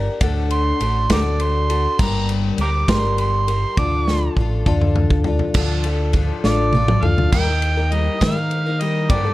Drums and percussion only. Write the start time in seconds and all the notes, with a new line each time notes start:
0.21 kick, ride
0.51 ride
0.81 ride
1.10 kick, snare, ride
1.40 ride
1.70 ride
1.99 kick, crash
2.29 ride
2.58 ride
2.88 kick, snare, ride
3.18 ride
3.48 ride
3.77 kick, high tom
4.08 snare
4.37 kick
4.66 kick, mid tom
4.81 mid tom
4.96 mid tom
5.10 kick
5.24 floor tom
5.39 floor tom
5.54 kick, crash
5.84 ride
6.13 kick, ride
6.44 snare
6.73 high tom
6.88 mid tom
7.03 mid tom
7.18 floor tom
7.32 kick, crash
7.62 ride
7.92 ride
8.21 kick, snare, ride
8.51 ride
8.81 ride
9.10 kick, ride